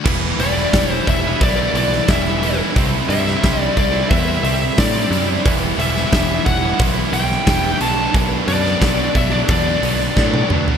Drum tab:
CC |x---------------|----------------|----------------|----------------|
HH |--o-o-o-o-o-o-o-|o-o-o-o-o-o-o-o-|o-o-o-o-o-o-o-o-|o-o-o-o-o-o-----|
SD |---oo------ooo--|---oo-------oo--|---oo------oo---|---oo------oo---|
T1 |----------------|----------------|----------------|-------------o--|
T2 |----------------|----------------|----------------|--------------o-|
FT |----------------|----------------|----------------|---------------o|
BD |o---o-o-o---o---|o---o-o-o---o---|o---o-o-o---o---|o---o-o-o---o---|